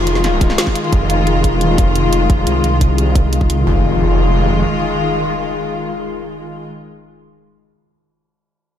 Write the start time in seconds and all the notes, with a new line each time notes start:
Already playing: F1 D#3 G#3 F4
0.07 closed hi-hat, ride
0.15 snare
0.24 snare, closed hi-hat, ride
0.41 kick, closed hi-hat, ride
0.49 snare
0.58 snare, closed hi-hat, ride
0.67 kick, snare
0.75 closed hi-hat, ride
0.84 ride
0.92 F1, kick, closed hi-hat
1.10 closed hi-hat
1.27 closed hi-hat
1.44 kick, closed hi-hat
1.52 E1
1.61 closed hi-hat
1.78 F1, kick, closed hi-hat
1.96 closed hi-hat
2.12 F1, closed hi-hat
2.30 kick, closed hi-hat
2.47 C2, closed hi-hat
2.64 C2, closed hi-hat
2.81 kick, closed hi-hat
2.98 closed hi-hat
3.15 kick, closed hi-hat
3.33 closed hi-hat
3.41 kick
3.50 closed hi-hat
3.67 F1 D#3 G#3 F4, impact